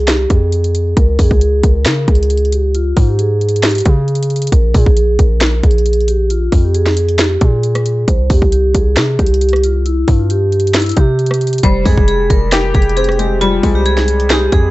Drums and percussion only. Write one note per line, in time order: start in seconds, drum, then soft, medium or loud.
0.08 snare loud
0.08 clap medium
0.08 closed hi-hat medium
0.30 kick medium
0.30 closed hi-hat medium
0.52 closed hi-hat medium
0.64 closed hi-hat medium
0.75 closed hi-hat medium
0.97 kick loud
0.97 closed hi-hat medium
1.19 kick medium
1.19 open hi-hat medium
1.31 kick medium
1.41 closed hi-hat medium
1.63 kick medium
1.63 closed hi-hat medium
1.86 snare loud
1.86 clap medium
1.86 closed hi-hat medium
2.08 kick loud
2.08 closed hi-hat soft
2.15 closed hi-hat medium
2.23 closed hi-hat medium
2.30 closed hi-hat medium
2.37 closed hi-hat medium
2.45 closed hi-hat soft
2.52 closed hi-hat medium
2.75 closed hi-hat medium
2.97 kick medium
2.97 open hi-hat medium
3.19 closed hi-hat medium
3.41 closed hi-hat soft
3.49 closed hi-hat medium
3.56 closed hi-hat medium
3.63 snare loud
3.63 clap medium
3.63 closed hi-hat medium
3.69 closed hi-hat medium
3.75 closed hi-hat medium
3.78 closed hi-hat medium
3.80 closed hi-hat medium
3.85 kick loud
3.85 closed hi-hat medium
4.08 closed hi-hat soft
4.15 closed hi-hat medium
4.23 closed hi-hat medium
4.30 closed hi-hat soft
4.36 closed hi-hat medium
4.42 closed hi-hat medium
4.47 closed hi-hat medium
4.52 kick loud
4.52 closed hi-hat medium
4.74 kick medium
4.74 open hi-hat medium
4.86 kick medium
4.97 closed hi-hat medium
5.19 kick medium
5.19 closed hi-hat medium
5.41 snare loud
5.41 clap medium
5.41 closed hi-hat medium
5.63 kick loud
5.63 closed hi-hat soft
5.71 closed hi-hat medium
5.78 closed hi-hat medium
5.86 closed hi-hat medium
5.93 closed hi-hat medium
6.01 closed hi-hat soft
6.08 closed hi-hat medium
6.30 closed hi-hat medium
6.52 kick medium
6.52 open hi-hat medium
6.74 closed hi-hat medium
6.86 snare medium
6.97 closed hi-hat medium
7.09 closed hi-hat soft
7.19 snare loud
7.19 clap medium
7.19 closed hi-hat medium
7.41 kick medium
7.41 closed hi-hat medium
7.63 closed hi-hat medium
7.75 cross-stick medium
7.75 closed hi-hat medium
7.86 closed hi-hat medium
8.08 kick loud
8.08 closed hi-hat medium
8.30 kick medium
8.30 open hi-hat medium
8.42 kick medium
8.52 closed hi-hat medium
8.75 kick medium
8.75 closed hi-hat medium
8.97 snare loud
8.97 clap medium
8.97 closed hi-hat medium
9.19 kick loud
9.19 closed hi-hat soft
9.26 closed hi-hat medium
9.34 closed hi-hat medium
9.41 closed hi-hat medium
9.49 closed hi-hat medium
9.53 cross-stick medium
9.53 closed hi-hat soft
9.63 closed hi-hat medium
9.86 closed hi-hat medium
10.08 kick medium
10.08 open hi-hat medium
10.30 closed hi-hat medium
10.52 closed hi-hat soft
10.60 closed hi-hat medium
10.67 closed hi-hat medium
10.74 snare loud
10.74 clap medium
10.74 closed hi-hat medium
10.80 closed hi-hat medium
10.86 closed hi-hat medium
10.89 closed hi-hat medium
10.91 closed hi-hat medium
10.97 kick medium
10.97 closed hi-hat medium
11.19 closed hi-hat soft
11.26 closed hi-hat medium
11.31 cross-stick medium
11.31 closed hi-hat medium
11.41 closed hi-hat soft
11.47 closed hi-hat medium
11.53 closed hi-hat medium
11.58 closed hi-hat medium
11.63 kick loud
11.63 closed hi-hat medium
11.86 kick medium
11.86 open hi-hat medium
11.98 kick medium
12.08 closed hi-hat medium
12.30 kick medium
12.30 closed hi-hat medium
12.52 snare loud
12.52 clap medium
12.52 closed hi-hat medium
12.75 kick loud
12.75 closed hi-hat soft
12.82 closed hi-hat medium
12.89 closed hi-hat medium
12.97 closed hi-hat medium
13.04 closed hi-hat medium
13.09 cross-stick medium
13.09 closed hi-hat soft
13.19 closed hi-hat medium
13.41 closed hi-hat medium
13.63 kick medium
13.63 open hi-hat medium
13.86 closed hi-hat medium
13.97 snare medium
14.08 closed hi-hat medium
14.20 closed hi-hat soft
14.30 snare loud
14.30 clap medium
14.30 closed hi-hat medium
14.52 kick loud
14.52 closed hi-hat medium